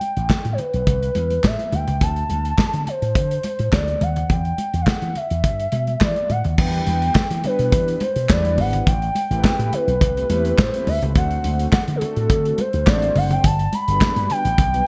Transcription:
Already playing: soft synth lead G5
0.01 closed hi-hat, high conga
0.17 slap bass A1, closed hi-hat
0.30 kick, snare, clap
0.45 slap bass A2, closed hi-hat
0.53 soft synth lead C5
0.58 soft synth lead B4, closed hi-hat, low conga
0.73 slap bass B1, closed hi-hat
0.87 slap bass C2, kick, closed hi-hat, muted conga
1.03 closed hi-hat
1.15 slap bass E2, closed hi-hat, muted conga, high conga
1.30 closed hi-hat, high conga
1.44 slap bass A2, soft synth lead E5, kick, snare, clap, muted conga, high conga
1.59 closed hi-hat
1.72 slap bass D2, soft synth lead G5, closed hi-hat, high conga, low conga
1.88 slap bass C#2, closed hi-hat, low conga
2.01 slap bass D2, soft synth lead A5, kick, closed hi-hat, muted conga
2.16 closed hi-hat
2.30 slap bass D2, closed hi-hat, muted conga, high conga
2.45 closed hi-hat
2.58 muted slap bass stroke, kick, snare, clap, muted conga
2.73 slap bass D3, closed hi-hat
2.87 soft synth lead C5, closed hi-hat, muted conga, low conga
3.02 slap bass A2, closed hi-hat
3.15 slap bass D3, kick, closed hi-hat, muted conga
3.31 closed hi-hat
3.43 closed hi-hat, muted conga, high conga
3.59 slap bass A2, closed hi-hat, high conga
3.73 slap bass D2, soft synth lead D5, kick, snare, clap, high conga
3.88 closed hi-hat
4.01 slap bass D#2, soft synth lead F#5, closed hi-hat, muted conga, high conga, low conga
4.16 closed hi-hat, low conga
4.29 slap bass E2, soft synth lead G5, kick, closed hi-hat, muted conga
4.45 closed hi-hat
4.58 closed hi-hat, muted conga, high conga
4.74 slap bass E2, closed hi-hat
4.81 soft synth lead F5
4.87 soft synth lead F#5, kick, snare, clap, muted conga
5.02 slap bass E3, closed hi-hat
5.15 soft synth lead E5, closed hi-hat, muted conga, low conga
5.30 slap bass E2, closed hi-hat
5.44 slap bass G2, kick, closed hi-hat
5.60 closed hi-hat
5.72 slap bass B2, closed hi-hat, muted conga, high conga
5.87 closed hi-hat, high conga
6.01 slap bass E3, soft synth lead D5, kick, snare, clap, muted conga, high conga
6.16 closed hi-hat
6.30 slap bass A2, soft synth lead F#5, closed hi-hat, muted conga, high conga, low conga
6.44 slap bass D#2, closed hi-hat, low conga
6.58 slap bass E2, analog polysynth G3 B3 D4 E4 B4, soft synth lead G5, kick, crash, muted conga
6.73 closed hi-hat
6.87 slap bass E2, closed hi-hat, high conga
7.02 closed hi-hat
7.15 kick, snare, clap, muted conga
7.30 slap bass E3, closed hi-hat
7.44 analog polysynth G3 B3 D4 E4 B4, soft synth lead B4, closed hi-hat, low conga
7.59 slap bass B2, closed hi-hat
7.72 slap bass E3, kick, closed hi-hat, muted conga
7.88 closed hi-hat
8.00 soft synth lead C5, closed hi-hat, high conga
8.16 slap bass B2, closed hi-hat
8.29 slap bass E2, analog polysynth G3 B3 D4 E4 B4, soft synth lead D5, kick, snare, clap, muted conga, high conga
8.45 closed hi-hat
8.58 slap bass G#1, soft synth lead F#5, open hi-hat, muted conga, high conga, low conga
8.73 closed hi-hat, low conga
8.87 slap bass A1, soft synth lead G5, kick, closed hi-hat
9.02 closed hi-hat
9.15 closed hi-hat, high conga
9.30 slap bass A1, analog polysynth A3 C4 E4 G4 A#4, closed hi-hat
9.37 analog polysynth B4
9.44 kick, snare, clap, muted conga
9.59 slap bass A2, closed hi-hat
9.73 soft synth lead B4, closed hi-hat, muted conga, low conga
9.88 slap bass B1, closed hi-hat
10.01 slap bass C2, kick, closed hi-hat, muted conga
10.16 analog polysynth A3 C4 E4 G4 B4, closed hi-hat
10.30 slap bass E2, analog polysynth A3 C4 E4 G4 B4, closed hi-hat, muted conga, high conga
10.45 closed hi-hat
10.58 slap bass A2, soft synth lead C5, kick, snare, clap, muted conga, high conga
10.73 analog polysynth A3 C4 E4 G4 B4, closed hi-hat
10.87 slap bass D2, soft synth lead E5, open hi-hat, muted conga, high conga, low conga
11.02 slap bass C#2, analog polysynth A3 C4 E4 G4 B4, closed hi-hat, low conga
11.15 slap bass D2, analog polysynth A3 C4 D4 F#4 C5, soft synth lead F#5, kick, closed hi-hat, muted conga
11.31 closed hi-hat
11.44 slap bass D2, closed hi-hat, muted conga, high conga
11.59 closed hi-hat
11.73 soft synth lead F#5, kick, snare, clap, muted conga
11.88 slap bass D3, closed hi-hat
11.96 soft synth lead G#4
12.01 analog polysynth A3 C4 D4 F#4 A4, soft synth lead A4, closed hi-hat, muted conga, low conga
12.16 slap bass A2, closed hi-hat
12.30 slap bass D3, kick, closed hi-hat, muted conga
12.45 closed hi-hat
12.58 soft synth lead C5, closed hi-hat, muted conga, high conga
12.73 slap bass D2, closed hi-hat
12.87 slap bass A1, analog polysynth A3 C4 D4 F#4 C5, soft synth lead D5, kick, snare, clap, muted conga, high conga
13.02 closed hi-hat
13.16 slap bass F#1, soft synth lead F#5, open hi-hat, high conga, low conga
13.30 soft synth lead G5, closed hi-hat, low conga
13.44 slap bass G1, soft synth lead A5, kick, closed hi-hat
13.59 closed hi-hat
13.73 soft synth lead B5, closed hi-hat, muted conga, high conga
13.87 slap bass G1, analog polysynth G3 B3 D4 F#4 A4, closed hi-hat
13.95 analog polysynth B4
14.01 kick, snare, clap, muted conga
14.16 slap bass G2, closed hi-hat
14.30 soft synth lead G5, closed hi-hat, muted conga, low conga
14.45 slap bass A1, closed hi-hat
14.58 slap bass B1, kick, closed hi-hat
14.73 analog polysynth G3 B3 D4 F#4 B4, closed hi-hat

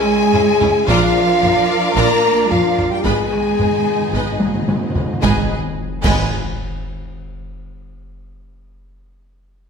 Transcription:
Already playing: cello section G#3, string section C#4 E4 G#4 E5, french horn section G#4, flute section G#5, violin section G#5
0.33 double bass section C#2, viola section C#4 E4, violin section C#5 E5, taiko low-mid
0.61 double bass section C#2, viola section C#4 E4, violin section G#4 C#5, taiko low-mid
0.88 double bass section A#1, cello section F3, string section D4 F4 A#4 D5, viola section D4 F4, french horn section F4, violin section D5 F5 A#5, flute section F5, taiko
1.42 double bass section A#1, viola section D4 F4, violin section A#4 F5, taiko low-mid
1.96 double bass section A#1, cello section A#3, viola section D4 F4, french horn section A#4, violin section D5 A#5, flute section A#5, taiko
2.50 double bass section A#1, cello section F3, viola section D4 F4, french horn section F4, violin section A#4 F5, flute section F5, taiko low-mid
2.77 double bass section A#1, viola section D4 F4, violin section F4 D5, taiko low-mid
2.90 cello section G3, french horn section G4, flute section G5, violin section G5
3.03 double bass section G#1, cello section G#3, string section B3 D#4 G#4 D#5, viola section B3 B4, french horn section G#4, violin section D#5 G#5 B5, flute section G#5, taiko
3.13 timpani G#2
3.20 timpani G#2
3.27 timpani G#2
3.33 timpani G#2, taiko rim
3.42 timpani G#2
3.50 timpani G#2
3.56 double bass section G#1, timpani G#2, viola section B3 B4, violin section B4 G#5, taiko low-mid
3.64 timpani G#2
3.71 timpani G#2
3.78 timpani G#2
3.86 timpani G#2
3.94 timpani G#2
4.01 timpani G#2
4.08 timpani G#2
4.13 double bass section G#1, timpani G#2, viola section B3 B4, violin section D#5 B5, taiko
4.24 timpani G#2
4.31 timpani G#2
4.39 timpani G#2, taiko high
4.47 timpani G#2
4.54 timpani G#2
4.62 timpani G#2
4.67 double bass section G#1, timpani G#2, viola section B3 B4, violin section B4 G#5, taiko high
4.76 timpani G#2
4.83 timpani G#2
4.90 timpani G#2
4.94 double bass section G#1, timpani G#2, viola section B3 B4, violin section G#4 D#5, taiko low
5.06 timpani G#2
5.13 timpani G#2
5.20 double bass section G#1, timpani G#2, cello section G#3, string section B3 D#4 G#4 D#5, viola section B3 B4, french horn section G#4, violin section D#5 G#5 B5, flute section G#5, concert bass drum, snare, taiko, impact
6.02 double bass section G#1, timpani G#2, cello section G#3, viola section B3 B4, violin section D#5 G#5 B5, flute section G#5, concert bass drum, taiko, crash

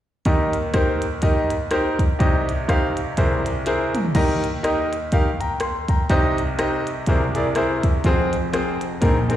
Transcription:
0.25 grand piano D#2 D#3 D#4 G4 A#4 D#5, kick, closed hi-hat
0.53 closed hi-hat
0.74 grand piano D#4 G4 A#4 C5, kick, cross-stick, closed hi-hat
1.02 closed hi-hat
1.22 grand piano D#4 G4 A#4 D#5, kick, closed hi-hat
1.50 cross-stick, closed hi-hat
1.71 grand piano D#4 G4 A#4 C5, cross-stick, closed hi-hat
1.99 kick, closed hi-hat
2.19 grand piano C2 C3 D#4 G4 C5 D#5, kick, closed hi-hat
2.49 closed hi-hat
2.68 grand piano D#4 G4 C5 F5, kick, cross-stick, closed hi-hat
2.97 closed hi-hat
3.17 grand piano C2 C3 E4 G#4 A#4 C5, kick, closed hi-hat
3.46 cross-stick, closed hi-hat
3.66 grand piano E4 G#4 A#4 C5, snare, closed hi-hat
3.95 closed hi-hat, mid tom
4.05 floor tom
4.15 grand piano D#2 D#3 D#4 G4 A#4 D#5, kick, closed hi-hat, crash
4.44 closed hi-hat
4.63 grand piano D#4 G4 A#4 D#5, cross-stick, closed hi-hat
4.92 cross-stick, closed hi-hat
5.12 grand piano D#4 G4 A#4 F5, kick, closed hi-hat
5.40 grand piano G5 A#5, closed hi-hat
5.60 grand piano C6, cross-stick, closed hi-hat
5.88 grand piano G5 A#5, kick, closed hi-hat
6.10 grand piano C2 C3 D#4 G4 C5 D#5, kick, closed hi-hat
6.38 closed hi-hat
6.58 grand piano D#4 G4 C5 D#5, cross-stick, closed hi-hat
6.87 closed hi-hat
7.06 grand piano C2 C3 E4 G#4 A#4 C5, kick, closed hi-hat
7.35 grand piano E4 G#4 A#4 D5, closed hi-hat
7.55 grand piano E4 G#4 A#4 C5, cross-stick, closed hi-hat
7.83 kick, closed hi-hat
8.04 grand piano F1 F2 C4 F4 G#4 C5, kick, closed hi-hat
8.33 closed hi-hat
8.53 grand piano C4 F4 G#4 C5, cross-stick, closed hi-hat
8.81 cross-stick, closed hi-hat
9.01 grand piano A#1 A#2 C4 D#4 G#4 A#4, kick, closed hi-hat
9.29 grand piano C4 D#4 G#4 A#4, closed hi-hat

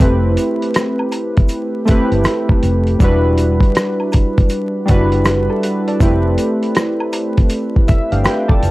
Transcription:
Already playing: synth keys A3 C4
0.00 fingered electric bass F1, synth keys E4 G4 B4, kick, closed hi-hat, shaker
0.37 closed hi-hat, shaker
0.62 closed hi-hat
0.74 cross-stick, closed hi-hat, shaker
0.99 high woodblock
1.12 closed hi-hat, high woodblock, shaker
1.37 kick, closed hi-hat
1.48 closed hi-hat, shaker
1.85 synth keys A3 C4 E4 G4, kick, closed hi-hat, shaker
1.90 synth keys B4
2.12 fingered electric bass G1, closed hi-hat
2.24 cross-stick, closed hi-hat, shaker
2.49 kick, high woodblock
2.63 fingered electric bass F1, closed hi-hat, shaker
2.87 closed hi-hat
2.99 fingered electric bass E1, synth keys G3 D4 E4 F#4, kick, closed hi-hat, shaker
3.04 synth keys B4
3.38 closed hi-hat, shaker
3.60 kick, closed hi-hat
3.75 cross-stick, closed hi-hat, shaker
4.00 high woodblock
4.12 kick, closed hi-hat, high woodblock, shaker
4.38 kick, closed hi-hat
4.49 closed hi-hat, shaker
4.86 synth keys G3 D4 E4, kick, closed hi-hat, shaker
4.90 fingered electric bass F#1, synth keys F#4 B4
5.12 closed hi-hat
5.25 cross-stick, closed hi-hat, shaker
5.50 synth keys E4 A4, high woodblock
5.63 synth keys F#4 B4, closed hi-hat, shaker
5.88 synth keys A4 D5, closed hi-hat
6.00 fingered electric bass F1, synth keys A3 C4 E4 G4, kick, closed hi-hat, shaker
6.05 synth keys B4
6.38 closed hi-hat, shaker
6.63 closed hi-hat
6.75 cross-stick, closed hi-hat, shaker
7.00 high woodblock
7.13 closed hi-hat, high woodblock, shaker
7.37 kick, closed hi-hat
7.49 closed hi-hat, shaker
7.76 kick
7.88 synth keys E5, kick, closed hi-hat, shaker
8.12 fingered electric bass G1, synth keys D4 G4 F5, closed hi-hat
8.24 synth keys F4 B4 G5, cross-stick, closed hi-hat, shaker
8.48 synth keys A4 D5 A5, kick, high woodblock
8.63 fingered electric bass F1, closed hi-hat, shaker

